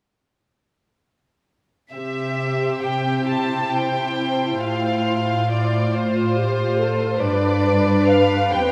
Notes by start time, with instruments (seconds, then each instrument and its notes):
1.93 cello section C3, viola section G4, violin section G4 C5 E5
2.84 violin section G5
3.29 viola section E4, violin section A5
3.75 violin section G5
4.65 cello section A2, violin section F4 F5
5.52 violin section D5
5.95 viola section F4, violin section C5
6.36 viola section G4
6.79 viola section A4
7.20 cello section G2, violin section D4 B4 D5, viola section B4
8.08 violin section F5
8.53 cello section E2, violin section C4 G4 G5